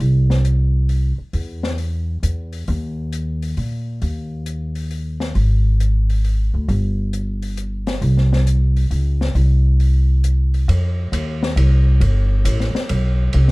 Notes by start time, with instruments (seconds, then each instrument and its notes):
0.00 upright bass C2, open hi-hat
0.30 snare
0.45 closed hi-hat
0.89 open hi-hat
1.18 muted upright bass stroke
1.33 upright bass E2, open hi-hat
1.63 snare
1.78 open hi-hat
2.23 upright bass E2, closed hi-hat
2.53 open hi-hat
2.68 upright bass D#2, open hi-hat
3.13 closed hi-hat
3.42 open hi-hat
3.57 upright bass A#2, open hi-hat
4.02 upright bass D#2, open hi-hat
4.46 closed hi-hat
4.75 open hi-hat
4.91 open hi-hat
5.20 snare
5.35 upright bass G#1, open hi-hat
5.80 closed hi-hat
6.10 open hi-hat
6.24 open hi-hat
6.54 upright bass D2
6.68 upright bass G1, open hi-hat
7.13 closed hi-hat
7.42 open hi-hat
7.57 closed hi-hat
7.87 snare, open hi-hat
8.01 upright bass C2, open hi-hat
8.17 snare
8.33 snare
8.47 closed hi-hat
8.76 open hi-hat
8.91 upright bass C#2, open hi-hat
9.21 snare
9.35 upright bass C2, open hi-hat
9.80 open hi-hat
10.24 closed hi-hat
10.54 open hi-hat
10.68 upright bass F2, ride
11.12 upright bass D#2, hi-hat pedal, ride
11.43 snare
11.56 upright bass C2, ride
12.00 upright bass G1, ride
12.45 upright bass A1, hi-hat pedal, ride
12.60 snare
12.75 muted upright bass stroke, snare
12.89 upright bass B1, ride
13.33 upright bass C2, ride
13.48 snare